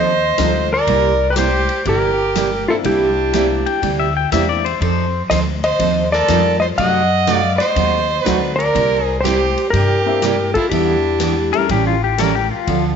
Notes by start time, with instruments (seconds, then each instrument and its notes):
Already playing: upright bass D#2, steel-string acoustic guitar F3 C4 D#4 A4, electric slide guitar C5 D#5, fiddle C5
0.38 upright bass D2, steel-string acoustic guitar F3 C4 D#4 A4, upright piano G3 A3 D#4 F4, snare, hi-hat pedal, ride
0.73 electric slide guitar A#4 D5, fiddle A#4
0.87 upright bass C2, steel-string acoustic guitar C3 G3 A#3 E4 G4, kick, ride
1.30 fiddle G4, electric slide guitar B4
1.36 steel-string acoustic guitar C3 G3 A#3 E4 G4, electric slide guitar G4 C5, fiddle G4, snare, hi-hat pedal, ride
1.69 ride
1.85 upright bass G1, steel-string acoustic guitar C3 G3 A#3 E4 G4, electric slide guitar G4 A#4, fiddle G4, kick, ride
2.35 steel-string acoustic guitar C3 G3 A#3 E4 G4, snare, hi-hat pedal, ride
2.68 upright piano A#3 C4 D4 E4, fiddle E4, electric slide guitar F4 A4
2.83 upright bass C2, steel-string acoustic guitar C3 G3 A#3 E4 G4, fiddle D4, electric slide guitar E4 G4, kick, ride
3.33 steel-string acoustic guitar C3 G3 A#3 E4 G4, upright piano A#3 C4 D4 E4, snare, hi-hat pedal, ride
3.66 pedal steel guitar G5, ride
3.82 upright bass D2, steel-string acoustic guitar C3 G3 A#3 E4 G4, kick, ride
4.00 pedal steel guitar E5
4.17 pedal steel guitar G5
4.32 upright bass E2, steel-string acoustic guitar C3 G3 A#3 E4 G4, upright piano A#3 C4 D4 E4, pedal steel guitar E5, snare, hi-hat pedal, ride
4.49 pedal steel guitar D5
4.65 pedal steel guitar C5, ride
4.81 upright bass F2, steel-string acoustic guitar F3 C4 D#4 A4, pedal steel guitar C5, kick, ride
5.30 upright bass D2, steel-string acoustic guitar F3 C4 D#4 A4, fiddle C5, electric slide guitar C5 D#5, snare, hi-hat pedal, ride
5.64 fiddle C5, electric slide guitar C5 D#5, ride
5.79 upright bass D#2, steel-string acoustic guitar F3 C4 D#4 A4, kick, ride
6.12 fiddle A4, electric slide guitar A#4 D5, snare
6.28 upright bass F2, steel-string acoustic guitar F3 C4 D#4 A4, upright piano G3 A3 D#4 F4, snare, hi-hat pedal, ride
6.60 fiddle C5, electric slide guitar C5 D#5
6.76 upright bass F#2, steel-string acoustic guitar C3 F#3 A3 D#4 F#4, fiddle D#5, electric slide guitar D#5 F#5, kick, ride
7.27 steel-string acoustic guitar C3 F#3 A3 D#4 F#4, snare, hi-hat pedal, ride
7.31 fiddle D5
7.37 electric slide guitar F5
7.58 fiddle C5, electric slide guitar C5 D#5, snare, ride
7.75 upright bass D#2, steel-string acoustic guitar C3 F#3 A3 D#4 F#4, kick, ride
8.22 steel-string acoustic guitar C3 F#3 A3, upright piano A3 C4, fiddle B4
8.26 upright bass D2, steel-string acoustic guitar D#4 F#4, upright piano D#4 F#4, electric slide guitar D5, snare, hi-hat pedal, ride
8.56 fiddle A#4, electric slide guitar A#4 D5
8.60 ride
8.74 upright bass C2, steel-string acoustic guitar C3 G3 A#3 E4 G4, kick, ride
9.03 fiddle G#4, electric slide guitar C5
9.21 steel-string acoustic guitar C3 A#3, fiddle G4, electric slide guitar G4 C5
9.25 steel-string acoustic guitar G3 E4 G4, snare, hi-hat pedal, ride
9.58 ride
9.70 upright bass G2, steel-string acoustic guitar C3 G3 A#3 E4, fiddle G4, electric slide guitar G4 A#4, kick, ride
9.75 steel-string acoustic guitar G4
10.05 upright piano A#3 C4 D4 E4
10.22 steel-string acoustic guitar C3 G3 A#3 E4 G4, snare, hi-hat pedal, ride
10.54 fiddle E4, electric slide guitar F4 A4, kick, ride
10.69 upright bass E2, steel-string acoustic guitar E3 B3 D4 G4, upright piano G3 B3 D4 E4, fiddle D4, electric slide guitar E4 G4, kick, ride
11.20 steel-string acoustic guitar E3 B3 D4 G4, snare, hi-hat pedal, ride
11.53 upright piano G3 A3 C#4 E4, pedal steel guitar A#4, ride
11.69 upright bass A1, steel-string acoustic guitar E3 G3 C#4 E4 A4, pedal steel guitar G4, kick, ride
11.87 pedal steel guitar F4
12.04 pedal steel guitar G4
12.18 steel-string acoustic guitar E3 G3 C#4 E4 A4, pedal steel guitar A#4, snare, hi-hat pedal, ride
12.35 pedal steel guitar G4
12.51 pedal steel guitar F4
12.67 upright bass D2, steel-string acoustic guitar D3 F3 C4 D4 A4, kick, ride